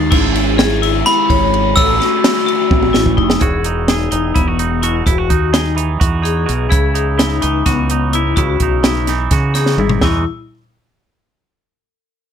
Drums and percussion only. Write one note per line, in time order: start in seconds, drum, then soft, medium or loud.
0.12 kick loud
0.12 crash loud
0.35 ride medium
0.59 snare loud
0.59 ride loud
0.83 ride medium
1.07 snare soft
1.07 ride loud
1.30 kick medium
1.30 ride medium
1.54 ride medium
1.77 kick loud
1.77 ride loud
2.02 snare soft
2.02 ride medium
2.24 snare loud
2.24 ride loud
2.48 ride medium
2.71 kick loud
2.71 high tom medium
2.83 high tom medium
2.94 snare medium
3.06 kick medium
3.18 kick medium
3.30 snare loud
3.41 kick loud
3.41 closed hi-hat medium
3.64 closed hi-hat medium
3.88 snare loud
3.88 closed hi-hat medium
4.12 closed hi-hat medium
4.36 kick loud
4.36 closed hi-hat medium
4.59 closed hi-hat medium
4.83 closed hi-hat medium
5.07 kick loud
5.07 closed hi-hat medium
5.30 kick medium
5.30 closed hi-hat medium
5.54 snare loud
5.54 closed hi-hat medium
5.78 closed hi-hat medium
6.01 kick loud
6.01 closed hi-hat loud
6.25 closed hi-hat medium
6.49 closed hi-hat medium
6.72 kick loud
6.72 closed hi-hat loud
6.95 closed hi-hat medium
7.19 snare loud
7.19 closed hi-hat medium
7.42 closed hi-hat medium
7.66 kick loud
7.66 snare soft
7.66 closed hi-hat loud
7.90 closed hi-hat medium
8.13 closed hi-hat medium
8.37 kick loud
8.37 closed hi-hat medium
8.60 kick medium
8.60 closed hi-hat medium
8.84 snare loud
8.84 closed hi-hat medium
9.07 snare soft
9.07 closed hi-hat medium
9.31 kick loud
9.31 snare soft
9.31 closed hi-hat loud
9.55 snare soft
9.55 closed hi-hat medium
9.66 snare medium
9.78 mid tom medium
9.89 floor tom loud
10.01 kick loud
10.01 snare loud